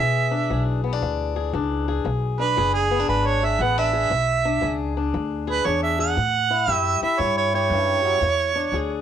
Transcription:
Already playing: E3 G#3 G#4 E5
0.00 E2 B2
0.31 D4
0.50 B1 E2 G#4
0.84 B3
0.93 D4
1.02 D2 E2
1.36 G#4
1.53 C#2 E2 D4
1.88 G#4
2.05 B1 E2
2.39 D4 B4
2.57 F#1 E2 G#4
2.74 G#4
2.91 B3
3.00 D4
3.08 G#1 E2 B4
3.27 C#5
3.43 G#4 E5
3.59 A1 E2 B3 F#5
3.78 D4 E5
3.93 G#4
4.10 B1 E2
4.45 D4
4.61 C#2 E2 G#4
4.97 D4
5.14 D2 E2
5.47 G#4 B4
5.65 E2 D4 C#5
5.83 E5
5.99 G#4 F#5
6.17 A2
6.50 E4
6.67 F#2 A2 G4
6.72 E5
7.01 E4 E5, muted upright bass stroke
7.19 G2 A2 C#5
7.37 C#5
7.54 G4 C#5
7.70 F#2 G2
8.05 F#2
8.21 E2
8.55 D4
8.72 D2 E2 G#4

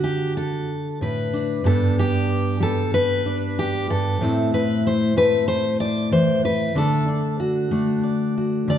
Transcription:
Already playing: D3 F#4
0.04 G4
0.37 A4
1.01 A2 B4
1.33 D4
1.64 G2 G3 B3 D4 A4
1.99 G4
2.60 G3 A4
2.94 B4
3.26 D4
3.59 G4
3.90 G2 A4
4.21 A2 A3 C4 E4
4.54 B4
4.87 C5
5.16 A3 B4
5.48 C5
5.80 D5
6.11 E3 C5
6.45 B4
6.75 D3 A3 D4 A4
7.08 D4
7.40 F#4
7.71 A3 D4
8.03 D5
8.37 F#4
8.68 D3 D5

